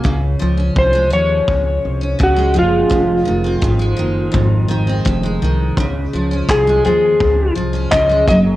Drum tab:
CP |--------|--------|--x---x-|
BD |o-o-o-o-|o-o-o-o-|o-o-o-oo|